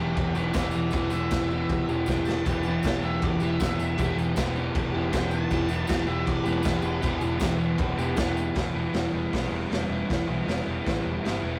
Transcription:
Already playing: E1 E3 E4 G4 D5 G5
0.00 B3
0.14 E1 D5 G5, kick, tambourine, crash
0.35 E1 B3 E4 G4 D5 G5, tambourine
0.53 E1 E3 B3 E4 G4 B4 E5, kick, snare, tambourine, crash
0.71 E1 B4, tambourine
0.75 E5
0.91 E1 E3 B3 B4, kick, tambourine, crash
0.95 E4 G4 E5
1.10 E1 E4 G4 E5, tambourine
1.15 B3
1.31 E1 E3 B3 E4 G4, kick, snare, tambourine, crash
1.51 B3 E4 G4, tambourine
1.69 E1, kick, tambourine, crash
1.87 E1 E4 G4, tambourine
1.91 B3
2.06 E1 E3 B3 E4 G5, kick, snare, tambourine
2.10 G4
2.25 A5, snare, tambourine
2.45 E1 E3 B3 E4 G4, kick, tambourine, crash
2.63 E4 G4, tambourine
2.68 B3
2.83 E1 E3 B3 E4, kick, snare, tambourine, crash
2.88 G4
3.01 E1 B3 E4 G4 E5, tambourine
3.22 E1 D5, kick, tambourine, crash
3.40 E1 B3 E4 G4 E5, tambourine
3.60 E1 E3 B3 E4 G4, kick, snare, tambourine, crash
3.78 E1, tambourine
3.98 E1 E3 B3 E4 G4, kick, tambourine, crash
4.17 E1 B3 E4 G4, tambourine
4.36 E1 E3 B3 E4 G4, kick, snare, tambourine, crash
4.55 B3 E4 G4, tambourine
4.75 E1, kick, tambourine, crash
4.93 E1 B3 E4 G4
5.11 E1 E3 B3 E4 G4 G5, kick, snare, tambourine, crash
5.31 A5, tambourine
5.49 E1 E3 B3 E4 G4, kick, tambourine, crash
5.68 B3 E4 G4, tambourine
5.87 E1 E3 B3 E4 G4, kick, snare, tambourine, crash
6.06 E1 B3 E4 G4 E5, tambourine
6.26 E1 D5, kick, tambourine, crash
6.43 E1 B3 E4 G4 B4, tambourine
6.63 E1 E3 B3 E4, kick, snare, tambourine, crash
6.67 G4
6.82 E1, tambourine
7.01 E1 E3 B3 E4 G4, kick, tambourine, crash
7.20 E1 B3 E4 G4, tambourine
7.39 E1 E3 B3 E4 G4, kick, snare, tambourine, crash
7.57 B3 E4 G4, tambourine
7.78 E1, kick, tambourine, crash
7.96 E1 E4 G4, tambourine
8.01 B3
8.16 E1 E3 B3 E4 G4, kick, snare, tambourine, crash
8.37 tambourine
8.55 E1 E3 G3 B3 E4, kick, snare, open hi-hat
8.73 E1 G3 B3 E4
8.94 E1 E3 G3 B3 E4, snare, open hi-hat
9.13 E1 G3 B3 E4
9.33 B1 E3 G3 B3 E4, kick, snare, open hi-hat
9.51 E1
9.69 E1 E3 G3 B3 E4, snare, open hi-hat
9.89 E1 G3 B3 E4
10.09 E1 E3 G3 B3 E4, kick, snare, open hi-hat
10.27 B1 G3 B3 E4
10.46 E1 E3 G3 B3 E4, snare, open hi-hat
10.66 E1 G3 B3 E4
10.85 A1 E3 G3 B3 E4, kick, snare, open hi-hat
11.05 E1
11.23 G1 E3 G3 B3 E4, snare, open hi-hat
11.42 E1 G3 B3 E4

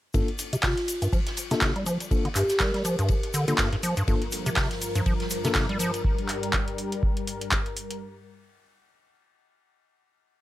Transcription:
0.14 G2 A#3 D4 F4 A4, kick, ride, shaker
0.28 closed hi-hat
0.39 open hi-hat, ride, shaker
0.53 C3, closed hi-hat, shaker
0.63 C3 F4, kick, snare, clap, open hi-hat, shaker
0.77 snare, closed hi-hat
0.88 open hi-hat, ride, shaker
1.02 G2, closed hi-hat, shaker
1.12 F3, kick, ride, shaker
1.27 snare, closed hi-hat
1.37 open hi-hat, ride, shaker
1.51 C3 A#3 D4 F4 A4, snare, closed hi-hat, shaker
1.61 C3, kick, snare, clap, ride, shaker
1.76 G3, closed hi-hat
1.86 F3, open hi-hat, ride, shaker
2.00 closed hi-hat, shaker
2.11 A#3 D4 F4 A4, kick, ride, shaker
2.25 D3, closed hi-hat
2.35 G2 G4, clap, open hi-hat, ride, shaker
2.49 G4, snare, closed hi-hat, shaker
2.60 G3 A#4, kick, snare, clap, ride, shaker
2.74 G3, snare, closed hi-hat
2.85 F3, open hi-hat, ride, shaker
2.99 G2, closed hi-hat, shaker
3.08 A#3, kick, ride, shaker
3.23 closed hi-hat
3.34 D3, open hi-hat, ride, shaker
3.48 D3 A#3 D4 F4 A4, closed hi-hat, ride, shaker
3.58 G2, kick, snare, clap, ride, shaker
3.72 G2, closed hi-hat, ride
3.83 F3, open hi-hat, ride, shaker
3.97 G2, closed hi-hat, shaker
4.08 G2 F3 A#3 D4 F4 A4 A#4, kick, ride, shaker
4.22 closed hi-hat
4.32 open hi-hat, ride, shaker
4.46 C3, closed hi-hat, shaker
4.56 C3, kick, snare, clap, open hi-hat, shaker
4.71 snare, closed hi-hat
4.82 open hi-hat, ride, shaker
4.95 G2, closed hi-hat, shaker
5.06 F3, kick, ride, shaker
5.20 snare, closed hi-hat
5.30 open hi-hat, ride, shaker
5.45 C3 A#3 D4 F4 A4, snare, closed hi-hat, shaker
5.54 C3, kick, snare, clap, ride, shaker
5.69 G3, closed hi-hat
5.79 F3, open hi-hat, ride, shaker
5.94 closed hi-hat, shaker
6.04 G3, kick
6.18 closed hi-hat
6.29 clap, open hi-hat
6.43 closed hi-hat
6.53 kick, clap
6.68 closed hi-hat
6.78 open hi-hat
6.92 closed hi-hat
7.03 kick
7.17 closed hi-hat
7.27 open hi-hat
7.41 closed hi-hat
7.52 kick, clap
7.66 closed hi-hat
7.77 open hi-hat
7.91 closed hi-hat

